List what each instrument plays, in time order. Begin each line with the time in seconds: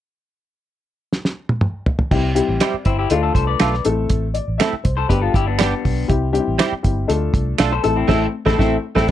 1.13 snare
1.25 snare
1.49 high tom
1.61 mid tom
1.86 floor tom
1.99 floor tom
2.11 fingered electric bass C2, upright piano G3 C4 E4 G4, kick, crash
2.35 upright piano G3 C4 E4 G4, closed hi-hat
2.48 fingered electric bass A1
2.60 clean electric guitar G3 C4 E4 G4, upright piano D5, finger snap, snare, closed hi-hat
2.74 muted fingered electric bass stroke
2.85 fingered electric bass G1, clean electric guitar C4 E4, upright piano C5, kick, closed hi-hat
2.99 clean electric guitar E4 G4
3.10 fingered electric bass D2, upright piano A3 D4 F4 A4, clean electric guitar D4 F4, closed hi-hat
3.23 clean electric guitar F4 A4
3.34 fingered electric bass C2, clean electric guitar A4 C5, kick, closed hi-hat
3.47 clean electric guitar B4 D5
3.60 fingered electric bass B1, clean electric guitar A3 D4 F4 A4, finger snap, snare, closed hi-hat
3.74 snare
3.85 fingered electric bass A1, upright piano A3 C4 E4 A4, closed hi-hat
4.10 fingered electric bass A1, kick, closed hi-hat
4.34 upright piano D5, closed hi-hat
4.48 fingered electric bass A1
4.58 clean electric guitar A3 C4 E4 A4, upright piano E5, finger snap, snare, closed hi-hat
4.73 muted fingered electric bass stroke
4.84 fingered electric bass C2, upright piano C5, kick, closed hi-hat
4.97 clean electric guitar A4 C5
5.09 fingered electric bass G1, upright piano G3 B3 D4 G4, clean electric guitar G4 B4, kick, closed hi-hat
5.21 clean electric guitar F4 A4
5.34 fingered electric bass G1, clean electric guitar E4 G4, kick, closed hi-hat
5.47 clean electric guitar B3 D4
5.59 clean electric guitar G3 B3 D4 G4, finger snap, snare, closed hi-hat
5.85 fingered electric bass B1, kick, open hi-hat
6.08 fingered electric bass C2, upright piano G3 C4 E4 G4, kick, closed hi-hat
6.33 upright piano G3 C4 D4 G4, closed hi-hat
6.39 upright piano E4
6.48 fingered electric bass A1
6.59 clean electric guitar G3 C4 E4 G4, finger snap, snare, closed hi-hat
6.72 muted fingered electric bass stroke
6.83 fingered electric bass G1, upright piano G3 C4 E4 G4, kick, closed hi-hat
7.08 fingered electric bass D2, upright piano A3 D4 F4 A4, closed hi-hat
7.34 fingered electric bass C2, kick, closed hi-hat
7.58 fingered electric bass B1, clean electric guitar A3 D4 F4 A4, finger snap, snare, closed hi-hat
7.72 clean electric guitar A4 C5
7.83 fingered electric bass A1, upright piano A3 C4 E4 A4, clean electric guitar A4, closed hi-hat
7.96 clean electric guitar C4 E4
8.08 fingered electric bass A1, upright piano A3 C4 E4 A4, clean electric guitar A3 C4 E4 A4, kick, snare, crash
8.46 fingered electric bass A1, clean electric guitar A3 C4 E4 A4, upright piano A3 C4 E4 A4, kick, snare
8.58 fingered electric bass A1, upright piano A3 C4 E4 A4, clean electric guitar A3 C4 E4 A4, kick, snare
8.95 fingered electric bass A1, upright piano A3 C4 E4 A4, clean electric guitar A3 C4 E4 A4, kick, snare
9.08 clean electric guitar B3